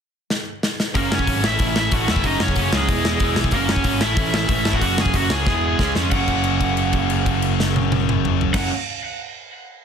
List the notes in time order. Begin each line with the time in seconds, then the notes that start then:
0.30 snare
0.63 snare
0.80 snare
0.94 F#1 F#2 C#3 F#3 A#3 C#4 F#4 A#4, kick, open hi-hat
1.11 F#1 C#4 C#5, snare
1.19 kick
1.27 G#1 F#2 C#3 F#3 A#3 C#4 F#4, kick, open hi-hat
1.43 A1 A2 E3 A3 C#4 E4 E5, snare
1.59 A1 A2 E3 A3 C#4 E4, kick, open hi-hat
1.76 E4 E5, snare
1.92 A1 A2 E3 A3 C#4 E4 F#4 F#5, kick, open hi-hat
2.08 E2 A2 E3 A3 C#4 E4 E5, snare
2.16 kick
2.23 F#1 F#2 C#3 F#3 A#3 C#4 D#4 F#4 D#5, kick, open hi-hat
2.40 F#1 C#4 C#5, snare
2.48 kick
2.55 F#1 F#2 C#3 F#3 A#3 C#4 F#4, kick, open hi-hat
2.71 C#2 C#3 F#3 G#3 A#3 C#4 F#4, snare
2.75 F#2 G#4
2.87 E1 E2 B2 E3 B3 E4 G#4, kick, open hi-hat
3.05 snare
3.19 E1 E2 B2 E3 B3 E4 G#4, kick, open hi-hat
3.35 B1 E2 B2 E3 B3 E4 G#4, snare
3.44 kick
3.51 F#1 F#2 C#3 F#3 A#3 C#4 F#4 A#4, kick, open hi-hat
3.69 F#1 C#4 C#5, snare
3.76 kick
3.84 G#1 F#2 C#3 F#3 A#3 C#4 F#4, kick, open hi-hat
4.01 A1 A2 E3 A3 C#4 E4 E5, snare
4.16 A1 A2 E3 A3 C#4 E4, kick, open hi-hat
4.34 E4 E5, snare
4.48 A1 A2 E3 A3 C#4 E4, kick, open hi-hat
4.65 G#1 A2 E3 A3 C#4 E4, snare
4.73 F#4 F#5, kick
4.80 F#1 F#2 C#3 F#3 A#3 C#4 F#4 F#5, kick, open hi-hat
4.98 F#1 G#4 G#5, snare
5.06 kick
5.13 F#1 F#2 C#3 F#3 A#3 C#4 F#4 F#5, kick, open hi-hat
5.30 C#2 F#2 C#3 F#3 A#3 C#4 F#4 G#4 G#5, snare
5.46 E1 E2 B2 E3 G#3 B3 E4, kick, snare
5.79 C#2 C#3 G#3 C#4 F4, kick, snare
5.95 F2 C#3 G#3 C#4 F4, snare
6.10 F#1 F#2 C#3 F#3 A#3 F#5, kick, crash
6.15 C#4
6.28 kick, crash
6.44 crash
6.61 kick, crash
6.77 crash
6.93 kick, crash
7.10 crash
7.26 kick, crash
7.42 crash
7.60 snare
7.76 high tom
7.92 high tom
8.09 mid tom
8.25 mid tom
8.41 floor tom
8.53 F#1 F#2 C#3 F#3 A#3 C#4 F#5, kick, snare, crash